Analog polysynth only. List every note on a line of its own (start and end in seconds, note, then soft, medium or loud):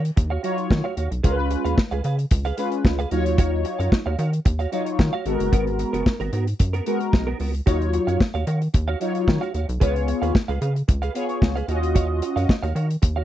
0.43 0.84 F#3 medium
0.43 0.85 D#4 medium
0.43 0.85 F4 medium
0.43 0.85 C#5 loud
1.24 1.77 G#3 medium
1.24 1.77 C#4 medium
1.24 1.78 F4 medium
1.24 1.31 A#4 medium
1.31 1.81 B4 loud
2.58 2.99 G#3 medium
2.58 2.99 C#4 medium
2.58 2.99 F4 medium
2.58 2.99 B4 medium
3.11 3.97 F#3 medium
3.11 3.98 D#4 medium
3.11 3.98 F4 medium
3.11 3.98 C#5 loud
4.72 5.13 F#3 medium
4.72 5.13 D#4 medium
4.72 5.13 F4 medium
4.72 5.13 C#5 medium
5.26 6.12 G#3 medium
5.26 6.12 B3 medium
5.26 6.12 F#4 medium
5.26 5.33 A4 medium
5.33 6.15 A#4 loud
6.86 7.27 G#3 medium
6.86 7.27 B3 medium
6.86 7.27 F#4 medium
6.86 7.28 A#4 medium
7.67 8.20 F#3 medium
7.67 8.20 D#4 medium
7.67 8.20 F4 medium
7.67 8.21 C#5 medium
9.01 9.42 F#3 medium
9.01 9.42 D#4 medium
9.01 9.42 F4 medium
9.01 9.42 C#5 medium
9.81 10.34 B3 medium
9.81 10.35 F4 medium
9.81 10.35 G#4 medium
9.81 10.35 C#5 medium
11.15 11.56 B3 medium
11.15 11.56 F4 medium
11.15 11.56 G#4 medium
11.15 11.56 C#5 medium
11.68 12.55 C#4 medium
11.68 12.55 F4 medium
11.68 12.55 F#4 medium
11.68 12.55 D#5 medium